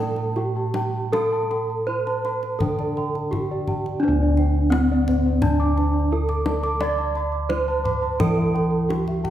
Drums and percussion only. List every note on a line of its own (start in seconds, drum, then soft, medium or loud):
0.16 kendang slap soft
0.36 kendang slap soft
0.74 kendang slap soft
0.74 kendang high medium
1.13 kendang high medium
1.51 kendang slap soft
2.07 kendang slap soft
2.25 kendang slap soft
2.43 kendang slap soft
2.60 kendang low medium
2.79 kendang slap soft
2.97 kendang slap soft
3.15 kendang slap soft
3.33 kendang low soft
3.67 kendang slap soft
3.67 kendang low medium
3.86 kendang slap soft
4.37 kendang slap soft
4.72 kendang high medium
5.08 kendang slap soft
5.08 kendang low medium
5.42 kendang low medium
5.77 kendang slap soft
6.29 kendang slap soft
6.46 kendang slap soft
6.46 kendang high medium
6.63 kendang slap soft
6.81 kendang high medium
7.15 kendang slap soft
7.50 kendang high medium
7.85 kendang slap soft
7.85 kendang low medium
8.20 kendang high medium
8.20 kendang low medium
8.55 kendang slap soft
8.90 kendang high medium
9.08 kendang slap soft
9.25 kendang slap soft
9.25 kendang low medium